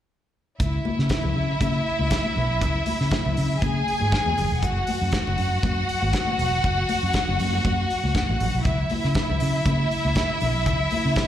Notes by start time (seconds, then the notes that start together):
0.60 C#2 E4 E5, kick, closed hi-hat
0.73 muted conga
0.85 high conga
0.99 C#3, snare
1.09 kick, snare, closed hi-hat, high conga
1.23 C#2, muted conga, low conga
1.35 C#3
1.61 C#3, kick, closed hi-hat, high conga
1.74 muted conga
1.99 C#2, high conga
2.10 kick, snare, closed hi-hat, muted conga
2.24 high conga
2.36 B1, low conga
2.61 C#2, kick, closed hi-hat, muted conga
2.75 muted conga
2.86 open hi-hat, high conga
3.01 C#3, snare
3.11 kick, snare, closed hi-hat, high conga
3.25 C#2, muted conga, low conga
3.37 C#3, open hi-hat
3.62 C#3 G#4 G#5, kick, closed hi-hat, high conga
3.88 open hi-hat
4.00 G#2, high conga
4.12 kick, snare, closed hi-hat, muted conga
4.26 E2, high conga
4.38 F#1, open hi-hat, low conga
4.52 E1
4.62 F#1 F#4 F#5, kick, closed hi-hat, muted conga
4.77 muted conga
4.87 open hi-hat, high conga
5.02 F#2
5.12 kick, snare, closed hi-hat, high conga
5.27 F#1, low conga
5.38 F#2, open hi-hat
5.63 F#2, kick, closed hi-hat, muted conga, high conga
5.89 open hi-hat
6.02 G#1, high conga
6.13 kick, snare, closed hi-hat
6.27 muted conga, high conga
6.38 E1, open hi-hat, low conga
6.64 F#1, kick, closed hi-hat, muted conga
6.77 muted conga
6.89 open hi-hat, high conga
7.03 F#2
7.13 kick, snare, closed hi-hat, muted conga, high conga
7.28 F#1, muted conga, low conga
7.39 F#2, open hi-hat, high conga
7.53 low conga
7.65 F#2, kick, closed hi-hat, muted conga, high conga
7.90 open hi-hat
8.03 C#2, high conga
8.15 kick, snare, closed hi-hat
8.29 A1, muted conga, high conga
8.40 A1, open hi-hat, low conga
8.55 B1
8.65 C#2 E4 E5, kick, closed hi-hat
8.90 open hi-hat, high conga
9.04 C#3, snare
9.15 kick, snare, closed hi-hat, muted conga, high conga
9.29 C#2, low conga
9.40 C#3, open hi-hat
9.66 C#3, kick, closed hi-hat, high conga
9.80 muted conga
9.91 open hi-hat
10.05 C#2, high conga
10.15 kick, snare, closed hi-hat, muted conga
10.29 high conga
10.41 B1, open hi-hat, low conga
10.66 C#2, kick, closed hi-hat
10.80 muted conga
10.91 open hi-hat, high conga
11.05 C#3
11.16 kick, snare, closed hi-hat, muted conga, high conga